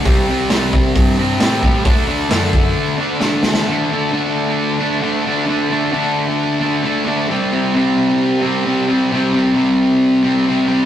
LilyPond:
<<
  \new Staff \with { instrumentName = "Distorted electric guitar" } { \time 4/4 \key c \lydian \tempo 4 = 133 <c g c'>8 <g c'>8 <c g c'>4. <g c'>8 <c g c'>8 <g c'>8 | <d a d'>8 <a d'>8 <d a d'>4. <a d'>8 <d a d'>8 <a d'>8 | <d a d'>8 <a d'>8 <d a d'>4. <a d'>8 <d a d'>8 <a d'>8 | <d a d'>8 <a d'>8 <d a d'>4. <a d'>8 <d a d'>8 <a d'>8 |
<c g c'>8 <g c'>8 <c g c'>4. <g c'>8 <c g c'>8 <g c'>8 | <c g c'>8 <g c'>8 <c g c'>4. <g c'>8 <c g c'>8 <g c'>8 | }
  \new Staff \with { instrumentName = "Picked electric bass" } { \clef bass \time 4/4 \key c \lydian c,4 c,4 g,4 a,4 | d,4 fis,4 r2 | r1 | r1 |
r1 | r1 | }
  \new DrumStaff \with { instrumentName = "Drums" } \drummode { \time 4/4 <hho bd>4 <hho sn>8 bd8 <hho bd>4 <hho sn>8 bd8 | <hho bd>4 <hho sn>8 bd8 r4 sn8 sn16 sn16 | r4 r4 r4 r4 | r4 r4 r4 r4 |
r4 r4 r4 r4 | r4 r4 r4 r4 | }
>>